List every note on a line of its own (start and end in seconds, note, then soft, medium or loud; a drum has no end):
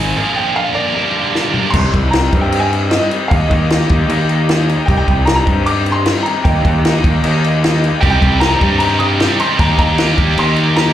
0.00 0.12 G#1 medium
0.00 0.15 G#2 medium
0.00 0.16 G#2 medium
0.00 0.15 D#3 medium
0.00 0.16 D#3 medium
0.00 0.15 G#3 medium
0.00 0.16 G#3 medium
0.00 0.15 C4 medium
0.00 0.16 C4 medium
0.00 0.13 D#4 medium
0.00 0.15 D#4 medium
0.00 0.16 D#4 medium
0.00 0.15 G#4 medium
0.00 0.16 G#4 medium
0.00 0.13 C5 medium
0.00 0.93 G#5 loud
0.00 0.34 A#5 medium
0.15 0.94 A#2 loud
0.15 0.94 D3 medium
0.15 0.95 F3 loud
0.15 0.95 A#3 loud
0.15 0.94 F4 medium
0.15 0.94 A#4 medium
0.15 0.73 A#4 medium
0.15 1.72 D5 medium
0.20 0.96 D4 loud
0.20 0.96 G#4 loud
0.36 0.55 G5 medium
0.56 0.75 F5 loud
0.74 0.92 A#2 medium
0.74 0.92 D3 medium
0.74 0.93 F3 medium
0.74 0.93 A#3 medium
0.74 0.93 D4 medium
0.74 0.93 A#4 medium
0.74 1.71 D5 medium
0.95 1.73 G2 medium
0.95 1.73 D3 medium
0.95 1.73 G3 medium
0.95 1.74 A#3 medium
0.95 1.74 D4 loud
0.95 1.72 G4 medium
0.95 1.74 G4 loud
0.95 1.49 A#4 loud
0.95 1.74 A#4 medium
0.95 1.74 A#5 medium
1.35 snare medium
1.51 1.73 G2 medium
1.51 1.72 D3 medium
1.51 1.72 G3 medium
1.51 1.72 A#3 medium
1.51 1.71 D4 medium
1.51 1.71 A#4 medium
1.51 floor tom medium
1.70 1.90 C2 loud
1.70 2.13 C3 loud
1.70 2.14 D#3 loud
1.70 6.41 G4 medium
1.70 10.93 D#5 medium
1.70 1.78 C6 loud
1.70 kick loud
1.70 crash loud
1.70 crash medium
1.75 2.15 G3 loud
1.75 2.14 C4 loud
1.75 2.16 G4 loud
1.75 3.30 C5 medium
1.75 10.93 A#5 loud
1.79 2.12 C6 medium
1.94 2.26 C2 medium
1.94 kick loud
1.94 crash medium
2.11 2.31 C3 medium
2.11 2.31 D#3 medium
2.11 2.39 A#5 loud
2.11 snare loud
2.11 crash loud
2.16 2.33 G3 medium
2.16 2.33 C4 medium
2.16 2.34 G4 loud
2.32 2.98 G2 medium
2.32 2.51 C3 medium
2.32 2.51 D#3 medium
2.32 2.53 G3 medium
2.32 2.52 C4 medium
2.32 2.54 G4 medium
2.32 kick loud
2.32 crash medium
2.41 2.60 G5 medium
2.52 2.89 C3 loud
2.52 2.91 D#3 loud
2.52 2.91 G3 loud
2.52 2.92 C4 loud
2.52 2.93 G4 loud
2.52 crash loud
2.60 2.91 G#5 loud
2.73 crash medium
2.89 3.12 C3 medium
2.89 3.12 D#3 medium
2.89 3.13 G3 medium
2.89 3.13 C4 medium
2.89 3.15 G4 medium
2.89 2.96 D#5 medium
2.89 snare loud
2.89 crash medium
2.98 3.30 D#5 medium
3.11 3.31 C3 loud
3.11 3.30 D#3 medium
3.11 3.32 G3 loud
3.11 3.31 C4 medium
3.11 3.33 G4 medium
3.11 crash medium
3.28 3.47 D#2 medium
3.28 3.71 D#3 loud
3.28 4.86 A#4 medium
3.28 3.40 F5 medium
3.28 kick loud
3.28 crash medium
3.32 3.73 A#3 loud
3.32 3.73 D#4 loud
3.32 3.74 G4 loud
3.32 3.45 D#5 medium
3.47 3.83 D#2 loud
3.47 4.63 D#5 medium
3.47 crash medium
3.51 kick medium
3.70 3.89 D#3 medium
3.70 3.90 A#3 medium
3.70 3.92 D#4 medium
3.70 3.92 G4 medium
3.70 snare loud
3.70 crash medium
3.89 4.06 D#2 loud
3.89 4.09 D#3 medium
3.89 4.10 A#3 medium
3.89 4.10 D#4 medium
3.89 4.11 G4 medium
3.89 kick medium
3.89 crash medium
4.08 4.74 D#2 loud
4.08 4.47 D#3 loud
4.08 4.49 A#3 loud
4.08 4.49 D#4 loud
4.08 4.50 G4 loud
4.08 crash medium
4.29 crash medium
4.48 4.67 D#3 medium
4.48 4.69 A#3 medium
4.48 4.69 D#4 loud
4.48 4.70 G4 medium
4.48 snare loud
4.48 crash medium
4.68 4.87 D#3 medium
4.68 4.89 A#3 medium
4.68 4.89 D#4 medium
4.68 4.90 G4 loud
4.68 crash medium
4.86 5.04 C2 loud
4.86 5.26 C3 loud
4.86 5.27 D#3 loud
4.86 5.28 G3 loud
4.86 6.44 C5 medium
4.86 4.96 G5 loud
4.86 kick loud
4.86 crash medium
4.90 5.29 D#4 loud
4.90 5.29 G4 loud
4.97 5.25 G5 loud
5.07 5.40 C2 medium
5.07 kick medium
5.07 crash medium
5.25 5.45 C3 medium
5.25 5.45 D#3 medium
5.25 5.47 G3 loud
5.25 5.34 A#5 loud
5.25 snare loud
5.25 crash medium
5.30 5.48 D#4 loud
5.30 5.48 G4 loud
5.35 5.67 A#5 loud
5.46 6.12 G2 loud
5.46 5.65 C3 medium
5.46 5.66 D#3 medium
5.46 5.67 G3 medium
5.46 5.68 D#4 medium
5.46 5.68 G4 medium
5.46 kick medium
5.46 crash medium
5.66 6.04 C3 loud
5.66 6.05 D#3 loud
5.66 6.06 G3 loud
5.66 6.07 D#4 loud
5.66 6.08 G4 loud
5.66 5.94 D6 loud
5.66 crash medium
5.86 crash medium
5.92 6.21 C6 loud
6.05 6.23 C3 medium
6.05 6.23 D#3 medium
6.05 6.25 G3 medium
6.05 6.26 D#4 medium
6.05 6.26 G4 medium
6.05 snare loud
6.05 crash loud
6.23 6.43 C3 medium
6.23 6.43 D#3 medium
6.23 6.44 G3 loud
6.23 6.44 D#4 medium
6.23 6.45 G4 loud
6.23 6.44 A#5 medium
6.23 crash medium
6.44 6.61 D#2 medium
6.44 6.82 D#3 loud
6.44 6.84 A#3 loud
6.44 6.85 D#4 loud
6.44 10.93 G4 medium
6.44 6.85 G4 loud
6.44 8.00 A#4 medium
6.44 7.78 G5 medium
6.44 kick loud
6.44 crash medium
6.65 6.97 D#2 loud
6.65 kick medium
6.65 crash medium
6.83 7.03 D#3 medium
6.83 7.05 A#3 medium
6.83 7.05 D#4 medium
6.83 7.05 G4 loud
6.83 snare loud
6.83 crash medium
7.04 7.20 D#2 loud
7.04 7.21 D#3 medium
7.04 7.23 A#3 medium
7.04 7.24 D#4 medium
7.04 7.24 G4 medium
7.04 kick medium
7.04 crash medium
7.22 7.88 D#2 loud
7.22 7.60 D#3 loud
7.22 7.61 A#3 medium
7.22 7.62 D#4 loud
7.22 7.62 G4 loud
7.22 crash loud
7.44 crash medium
7.61 7.80 D#3 medium
7.61 7.82 A#3 medium
7.61 7.82 D#4 medium
7.61 7.83 G4 medium
7.61 snare loud
7.61 crash medium
7.81 8.00 D#3 medium
7.81 8.02 A#3 medium
7.81 8.03 D#4 medium
7.81 8.03 G4 medium
7.81 crash medium
8.00 8.18 C2 loud
8.00 8.40 C3 loud
8.00 8.40 D#3 loud
8.00 8.42 G3 loud
8.00 8.42 D#4 loud
8.00 8.43 G4 loud
8.00 9.57 C5 medium
8.00 8.08 G5 loud
8.00 kick loud
8.00 crash medium
8.10 8.41 G5 loud
8.21 8.54 C2 medium
8.21 kick medium
8.21 crash medium
8.40 8.61 C3 medium
8.40 8.61 D#3 medium
8.40 8.63 G3 medium
8.40 8.63 D#4 loud
8.40 8.63 G4 medium
8.40 8.47 A#5 loud
8.40 snare loud
8.40 crash medium
8.49 8.77 A#5 loud
8.61 9.26 G2 loud
8.61 8.80 C3 medium
8.61 8.81 D#3 medium
8.61 8.82 G3 medium
8.61 8.83 D#4 medium
8.61 8.83 G4 medium
8.61 kick medium
8.61 crash medium
8.78 9.19 C3 loud
8.78 9.20 D#3 loud
8.78 9.21 G3 loud
8.78 8.98 A#5 loud
8.78 crash loud
8.83 9.21 D#4 loud
8.83 9.21 G4 loud
8.99 9.36 D#6 loud
8.99 crash medium
9.20 9.38 C3 medium
9.20 9.39 D#3 medium
9.20 9.40 G3 medium
9.20 9.41 D#4 medium
9.20 9.42 G4 medium
9.20 snare loud
9.20 crash medium
9.39 9.58 C3 medium
9.39 9.57 D#3 medium
9.39 9.59 G3 medium
9.39 9.59 D#4 medium
9.39 9.60 G4 loud
9.39 9.60 C6 loud
9.39 crash medium
9.58 9.75 D#2 medium
9.58 9.96 D#3 loud
9.58 9.97 A#3 loud
9.58 9.98 D#4 loud
9.58 9.98 G4 loud
9.58 10.93 A#4 medium
9.58 9.77 A#5 loud
9.58 kick loud
9.58 crash medium
9.78 10.11 D#2 loud
9.78 10.39 A#5 loud
9.78 kick loud
9.78 crash medium
9.97 10.15 D#3 medium
9.97 10.17 A#3 medium
9.97 10.18 D#4 medium
9.97 10.18 G4 medium
9.97 snare loud
9.97 crash medium
10.17 10.34 D#2 loud
10.17 10.35 D#3 medium
10.17 10.37 A#3 medium
10.17 10.38 D#4 medium
10.17 10.38 G4 medium
10.17 kick medium
10.17 crash medium
10.36 10.93 D#2 loud
10.36 10.74 D#3 medium
10.36 10.76 A#3 loud
10.36 10.76 D#4 loud
10.36 10.77 G4 loud
10.36 10.78 C6 loud
10.36 crash loud
10.56 crash medium
10.76 10.93 D#3 medium
10.76 10.93 A#3 medium
10.76 10.93 D#4 medium
10.76 10.93 G4 loud
10.76 10.93 A#5 loud
10.76 snare loud
10.76 crash medium